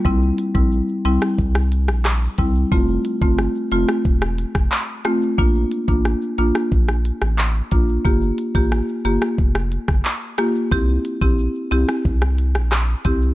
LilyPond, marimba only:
\new Staff \with { instrumentName = "Marimba" } { \time 4/4 \key c \mixolydian \tempo 4 = 90 <g c' e'>8. <g c' e'>16 r8 <g c' e'>16 r4. r16 <g c' e'>16 r16 | <a c' f'>8. <a c' f'>16 r8 <a c' f'>16 r4. r16 <a c' f'>16 r16 | <bes d' f'>8. <bes d' f'>16 r8 <bes d' f'>16 r4. r16 <bes d' f'>16 r16 | <bes f' g'>8. <bes f' g'>16 r8 <bes f' g'>16 r4. r16 <bes f' g'>16 r16 |
<c' e' g'>8. <c' e' g'>16 r8 <c' e' g'>16 r4. r16 <c' e' g'>16 r16 | }